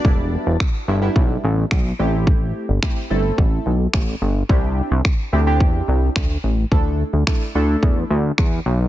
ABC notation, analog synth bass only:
X:1
M:4/4
L:1/16
Q:1/4=108
K:Em
V:1 name="Analog synth bass" clef=bass
E,,,3 E,,, z2 G,,,2 B,,,2 A,,,2 B,,,2 A,,,2- | A,,,3 G,,, z2 G,,,2 A,,,2 B,,,2 A,,,2 G,,,2 | C,,3 C,, z2 D,,2 E,,2 C,,2 D,,2 A,,,2 | D,,3 D,, z2 D,,2 E,,2 D,,2 E,,2 B,,,2 |]